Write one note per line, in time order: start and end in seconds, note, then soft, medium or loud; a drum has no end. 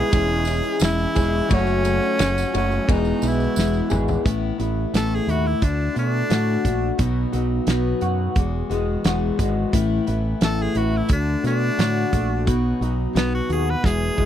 0.00 0.12 E2 medium
0.00 0.12 B2 medium
0.00 0.11 E3 soft
0.00 0.12 G#3 soft
0.00 0.13 B3 medium
0.00 0.13 E4 medium
0.00 0.10 G#4 medium
0.00 0.78 G#4 loud
0.11 0.60 E1 medium
0.11 0.47 E3 medium
0.11 0.47 G#3 medium
0.11 0.46 C#4 medium
0.11 0.45 E4 medium
0.11 1.14 G#4 loud
0.11 kick loud
0.11 ride medium
0.11 tambourine soft
0.45 0.81 C#4 medium
0.45 0.81 E4 medium
0.45 ride medium
0.45 tambourine medium
0.49 0.80 G#3 soft
0.63 tambourine soft
0.80 1.05 E1 medium
0.80 1.48 E3 medium
0.80 1.49 G#3 medium
0.80 1.48 C#4 medium
0.80 1.50 E4 medium
0.80 snare loud
0.80 ride loud
0.80 tambourine loud
0.84 1.55 E4 loud
0.98 tambourine soft
1.15 1.40 E1 medium
1.15 1.50 E3 medium
1.15 1.49 G#3 medium
1.15 1.49 C#4 medium
1.15 1.48 G#4 medium
1.15 kick medium
1.15 ride medium
1.15 tambourine medium
1.48 1.98 F#1 medium
1.48 1.83 F#2 medium
1.48 1.84 C#3 medium
1.48 1.84 F#3 medium
1.48 1.84 A3 medium
1.48 1.83 C#4 medium
1.48 1.82 F#4 medium
1.48 kick loud
1.48 ride medium
1.48 tambourine soft
1.54 2.55 C#4 loud
1.67 tambourine soft
1.84 2.17 F#3 soft
1.84 2.18 A3 soft
1.84 2.19 C#4 medium
1.84 2.18 F#4 medium
1.84 ride medium
1.84 tambourine medium
2.02 tambourine soft
2.18 2.43 F#1 medium
2.18 2.53 F#3 medium
2.18 2.53 A3 medium
2.18 2.53 C#4 medium
2.18 2.51 F#4 medium
2.18 snare loud
2.18 ride medium
2.18 tambourine loud
2.38 tambourine medium
2.52 2.78 F#1 medium
2.52 2.86 C#3 medium
2.52 2.87 F#3 soft
2.52 2.88 A3 medium
2.52 2.88 C#4 soft
2.52 2.87 F#4 medium
2.52 ride medium
2.52 tambourine soft
2.57 2.86 F#2 medium
2.57 2.93 C#4 medium
2.72 tambourine soft
2.87 3.12 E1 medium
2.87 3.22 E2 medium
2.87 3.22 B2 medium
2.87 3.22 E3 medium
2.87 3.22 G#3 medium
2.87 3.22 B3 medium
2.87 3.29 D#4 loud
2.87 3.89 G#4 loud
2.87 kick loud
2.87 ride medium
2.87 tambourine soft
3.05 tambourine soft
3.22 3.46 B1 medium
3.22 3.55 E3 soft
3.22 3.56 G#3 medium
3.22 3.57 B3 medium
3.22 3.56 E4 medium
3.22 ride medium
3.22 tambourine medium
3.28 3.94 E4 medium
3.40 tambourine soft
3.56 3.80 E1 medium
3.56 4.23 E3 medium
3.56 4.24 G#3 medium
3.56 4.24 B3 medium
3.56 4.25 E4 medium
3.56 snare medium
3.56 tambourine loud
3.73 tambourine soft
3.90 4.15 G#1 medium
3.90 4.24 E2 medium
3.90 4.24 B2 medium
3.90 4.24 E3 medium
3.90 4.23 G#3 medium
3.90 4.23 B3 medium
3.90 4.22 G#4 medium
3.90 mid tom medium
3.90 tambourine medium
4.08 floor tom medium
4.08 tambourine soft
4.24 4.50 A1 medium
4.24 4.59 A2 medium
4.24 4.59 E3 medium
4.24 4.59 A3 medium
4.24 4.59 B3 medium
4.24 4.57 E4 medium
4.24 kick loud
4.24 closed hi-hat medium
4.58 4.85 A1 medium
4.58 5.62 E3 medium
4.58 4.93 A3 soft
4.58 4.94 B3 medium
4.58 4.93 E4 medium
4.58 closed hi-hat medium
4.94 5.19 A1 medium
4.94 5.62 A2 medium
4.94 5.61 A3 medium
4.94 5.63 B3 medium
4.94 5.63 E4 medium
4.94 5.16 A4 medium
4.94 snare loud
4.94 closed hi-hat loud
5.15 5.32 G#4 medium
5.27 5.53 D#2 medium
5.27 5.63 E4 medium
5.27 5.48 F#4 medium
5.27 closed hi-hat medium
5.46 5.65 E4 medium
5.61 5.88 D2 medium
5.61 5.96 D3 medium
5.61 5.96 A3 medium
5.61 5.95 D4 medium
5.61 5.96 D4 medium
5.61 5.93 F#4 medium
5.61 kick medium
5.61 closed hi-hat medium
5.94 6.22 B2 medium
5.94 6.29 A3 soft
5.94 6.29 D4 soft
5.94 6.29 F#4 medium
5.94 closed hi-hat medium
5.98 6.97 D4 medium
6.29 6.56 A2 medium
6.29 6.64 D3 medium
6.29 6.65 A3 medium
6.29 6.65 D4 medium
6.29 6.63 F#4 medium
6.29 snare medium
6.29 closed hi-hat medium
6.64 6.90 A#1 medium
6.64 6.98 A3 soft
6.64 6.99 D4 medium
6.64 6.98 F#4 medium
6.64 kick medium
6.64 closed hi-hat medium
6.98 7.25 B1 medium
6.98 7.33 B2 medium
6.98 7.33 F#3 medium
6.98 7.33 B3 medium
6.98 7.33 D#4 medium
6.98 7.31 F#4 medium
6.98 kick loud
6.98 closed hi-hat medium
7.32 7.59 B1 medium
7.32 8.36 F#3 medium
7.32 7.67 B3 medium
7.32 7.67 D#4 medium
7.32 7.67 F#4 medium
7.32 closed hi-hat medium
7.67 7.93 B1 medium
7.67 8.36 B2 medium
7.67 8.36 F#3 medium
7.67 8.36 B3 medium
7.67 8.37 D#4 medium
7.67 8.37 F#4 loud
7.67 snare loud
7.67 closed hi-hat medium
8.01 8.27 F#2 medium
8.01 8.36 F#4 medium
8.01 closed hi-hat medium
8.36 8.61 E1 medium
8.36 9.73 E2 medium
8.36 8.71 E3 medium
8.36 8.70 G#3 medium
8.36 8.70 B3 medium
8.36 8.68 F#4 medium
8.36 kick loud
8.36 closed hi-hat medium
8.70 8.96 E1 medium
8.70 9.04 E3 medium
8.70 9.04 G#3 medium
8.70 9.04 B3 medium
8.70 9.05 F#4 medium
8.70 closed hi-hat medium
9.04 9.30 E1 medium
9.04 9.39 E2 medium
9.04 9.39 B2 medium
9.04 9.38 E3 medium
9.04 9.38 G#3 medium
9.04 9.37 B3 loud
9.04 9.36 F#4 medium
9.04 snare loud
9.04 closed hi-hat medium
9.37 9.64 G#1 medium
9.37 9.72 E3 medium
9.37 9.72 G#3 medium
9.37 9.72 B3 medium
9.37 9.73 F#4 medium
9.37 kick medium
9.37 closed hi-hat medium
9.72 9.99 A1 medium
9.72 10.07 A2 medium
9.72 10.07 E3 medium
9.72 10.07 A3 medium
9.72 10.07 B3 medium
9.72 10.05 E4 medium
9.72 kick loud
9.72 closed hi-hat medium
10.06 10.33 A1 medium
10.06 11.10 E3 medium
10.06 10.42 A3 soft
10.06 10.42 B3 medium
10.06 10.41 E4 medium
10.06 closed hi-hat medium
10.41 10.67 A1 medium
10.41 11.10 A2 medium
10.41 11.08 E3 medium
10.41 11.09 A3 medium
10.41 11.10 B3 medium
10.41 11.11 E4 medium
10.41 10.63 A4 loud
10.41 snare loud
10.41 closed hi-hat medium
10.62 10.79 G#4 medium
10.75 11.01 A1 medium
10.75 11.10 E4 medium
10.75 10.98 F#4 medium
10.75 closed hi-hat medium
10.97 11.11 E4 medium
11.09 11.35 D2 medium
11.09 11.44 D3 medium
11.09 11.44 A3 medium
11.09 11.43 D4 medium
11.09 11.45 D4 medium
11.09 11.42 F#4 medium
11.09 kick loud
11.09 closed hi-hat medium
11.43 11.69 B2 medium
11.43 11.77 A3 soft
11.43 11.78 D4 soft
11.43 12.45 D4 loud
11.43 11.78 F#4 soft
11.43 snare soft
11.43 closed hi-hat medium
11.78 12.04 A2 medium
11.78 12.12 D3 medium
11.78 12.13 A3 medium
11.78 12.12 D4 medium
11.78 12.10 F#4 medium
11.78 snare loud
11.78 closed hi-hat medium
12.11 12.47 A#1 medium
12.11 12.46 A3 soft
12.11 12.46 D4 soft
12.11 12.46 F#4 medium
12.11 kick medium
12.11 closed hi-hat medium
12.45 12.72 B1 medium
12.45 12.80 B2 medium
12.45 12.81 F#3 medium
12.45 12.81 B3 medium
12.45 12.81 D#4 medium
12.45 12.80 F#4 medium
12.45 kick loud
12.45 closed hi-hat medium
12.81 13.06 B1 medium
12.81 13.84 F#3 medium
12.81 13.14 B3 soft
12.81 13.14 D#4 medium
12.81 13.15 F#4 medium
12.81 closed hi-hat medium
13.13 13.40 B1 medium
13.13 13.83 B2 medium
13.13 13.82 F#3 medium
13.13 13.83 B3 medium
13.13 13.32 B3 medium
13.13 13.83 D#4 medium
13.13 13.84 F#4 medium
13.13 snare loud
13.13 closed hi-hat medium
13.35 13.49 F#4 medium
13.49 13.74 D#2 medium
13.49 13.84 F#4 medium
13.49 13.71 G#4 medium
13.49 closed hi-hat medium
13.70 13.87 B4 medium
13.83 14.09 E1 medium
13.83 14.26 E2 medium
13.83 14.17 F#3 medium
13.83 14.17 G#3 medium
13.83 14.16 B3 medium
13.83 14.15 E4 medium
13.83 14.26 G#4 loud
13.83 kick loud
13.83 snare medium
14.16 14.26 E1 medium
14.16 14.26 F#3 soft
14.16 14.26 G#3 soft
14.16 14.26 B3 medium
14.16 14.26 E4 medium
14.16 kick medium